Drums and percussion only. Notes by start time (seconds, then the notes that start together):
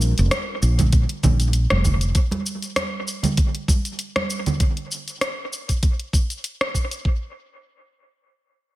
0.01 shaker
0.18 closed hi-hat, shaker
0.31 cross-stick, closed hi-hat, high conga, shaker
0.62 shaker
0.79 kick, closed hi-hat, high conga, low conga, shaker
0.92 kick, closed hi-hat, shaker
1.09 closed hi-hat
1.23 kick, high conga, low conga, shaker
1.40 closed hi-hat, shaker
1.53 closed hi-hat, shaker
1.70 cross-stick, closed hi-hat, high conga
1.85 kick, low conga, shaker
2.01 closed hi-hat, shaker
2.15 kick, closed hi-hat, shaker
2.31 closed hi-hat, high conga
2.46 shaker
2.62 closed hi-hat, shaker
2.76 cross-stick, closed hi-hat, high conga, shaker
3.08 shaker
3.23 closed hi-hat, high conga, low conga, shaker
3.37 kick, closed hi-hat, shaker
3.55 closed hi-hat
3.68 kick, high conga, shaker
3.85 closed hi-hat, shaker
3.99 closed hi-hat, shaker
4.16 cross-stick, closed hi-hat, high conga
4.30 shaker
4.46 closed hi-hat, low conga, shaker
4.60 kick, closed hi-hat, shaker
4.77 closed hi-hat
4.91 shaker
5.08 closed hi-hat, shaker
5.21 cross-stick, closed hi-hat, shaker
5.53 shaker
5.69 kick, closed hi-hat, shaker
5.83 kick, closed hi-hat, shaker
6.00 closed hi-hat
6.13 kick, shaker
6.30 closed hi-hat, shaker
6.44 closed hi-hat, shaker
6.61 cross-stick, closed hi-hat
6.74 kick, shaker
6.91 closed hi-hat, shaker
7.05 kick